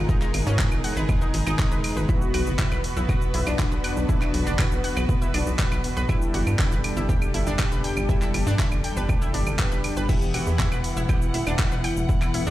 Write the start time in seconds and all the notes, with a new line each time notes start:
Already playing: E2 B2 G#3 D#4 F4 A#4
0.09 G#1 G#3 D#4 G#4 D#5, kick, shaker
0.22 D#4 D#5, clap, shaker
0.34 G#1, open hi-hat, claves
0.47 G#2 C#4 C#5, shaker
0.59 G#2 D#4 D#5, kick, clap, shaker
0.72 G#1, claves, shaker
0.84 G#3 D#4 G#4 F#5 F#6, open hi-hat
0.97 G#1 B4 B5, shaker
1.09 D#2, kick, claves, shaker
1.22 D#4 D#5, shaker
1.34 G#1 D#4 D#5, open hi-hat
1.47 G#1 D#4 D#5, claves, shaker
1.59 G#1 D#4 D#5, kick, clap, shaker
1.72 G#1 B4 B5, shaker
1.84 G#3 D#4 G#4, open hi-hat, claves
1.97 G#1 B4 B5, shaker
2.09 B1 B3 E4 F#4 B4 E5, kick, shaker
2.22 shaker
2.34 B1 F#4 F#5, open hi-hat, claves
2.47 F#1, shaker
2.59 F#1 E4 E5, kick, clap, shaker
2.72 B1 B4 B5, claves, shaker
2.84 B3 F#4 B4, open hi-hat
2.97 B1 E4 E5, shaker
3.09 F#1 F#4 F#5, kick, claves, shaker
3.22 shaker
3.34 B1 E4 E5, open hi-hat
3.47 B1 D4 D5, claves, shaker
3.59 B1 D4, kick, clap, shaker
3.72 B1 B4 B5, shaker
3.84 F#5 F#6, open hi-hat, claves
3.97 B1, shaker
4.09 B1 B3 E4 F#4 B4 E5, kick, shaker
4.22 E4 E5, clap, claves, shaker
4.34 B1, open hi-hat
4.47 F#1 D4 D5, shaker
4.59 F#1 E4 E5, kick, clap, claves, shaker
4.72 B1, shaker
4.84 B3 F#4 B4 F#5 F#6, open hi-hat
4.97 B1 B4 B5, claves, shaker
5.09 F#1, kick, shaker
5.22 E4 E5, shaker
5.34 B1 D4 D5, open hi-hat, claves
5.47 B1, shaker
5.59 B1 B3 B4, kick, clap, shaker
5.72 B1 B4 B5, claves, shaker
5.84 B3 F#4 B4, open hi-hat
5.97 B1 B4 B5, shaker
6.09 G1 G3 D4 E4 G4 A4 E5, kick, claves, shaker
6.22 shaker
6.34 G1 F#4 F#5, open hi-hat
6.47 G2, claves, shaker
6.59 G2 E4 E5, kick, clap, shaker
6.72 G1 B4 B5, shaker
6.84 G3 D4 G4, open hi-hat, claves
6.97 G1 E4 E5, shaker
7.09 D2 G4 G5, kick, shaker
7.22 claves, shaker
7.34 G1 E4 E5, open hi-hat
7.47 G1 D4 D5, shaker
7.59 G1 G4, kick, clap, claves, shaker
7.72 G1 B4 B5, shaker
7.84 G5 G6, open hi-hat
7.97 G1, claves, shaker
8.09 G1 G3 D4 E4 G4 E5, kick, shaker
8.22 E4 E5, clap, shaker
8.34 G1, open hi-hat, claves
8.47 G2 D4 D5, shaker
8.59 G2 E4 E5, kick, clap, shaker
8.72 G1, claves, shaker
8.84 G3 D4 G4 G5 G6, open hi-hat
8.97 G1 B4 B5, shaker
9.09 D2, kick, claves, shaker
9.22 E4 E5, shaker
9.34 G1 D4 D5, open hi-hat
9.47 G1, claves, shaker
9.59 G1 B3 B4, kick, clap, shaker
9.72 G1 B4 B5, shaker
9.84 G3 D4 G4, open hi-hat, claves
9.97 G1 B4 B5, shaker
10.09 E1 E2 B2 E3 B3 E4 G4 E5 F#5, kick, crash, shaker
10.22 shaker
10.34 E1 F#4 F#5, open hi-hat, claves
10.47 E2, shaker
10.59 E2 E4 E5, kick, clap, shaker
10.72 E1 B4 B5, claves, shaker
10.84 E3 B3 E4, open hi-hat
10.97 E1 E4 E5, shaker
11.09 B1 G4 G5, kick, claves, shaker
11.22 shaker
11.34 E1 E4 E5, open hi-hat
11.47 E1 D4 D5, claves, shaker
11.59 E1 E4, kick, clap, shaker
11.72 E1 B4 B5, shaker
11.84 G5 G6, open hi-hat, claves
11.97 E1, shaker
12.09 E1 E3 A3 B3 E4 E5, kick, shaker
12.22 E4 E5, clap, claves, shaker
12.34 E1 E4 E5, open hi-hat
12.47 E2 D4 D5, shaker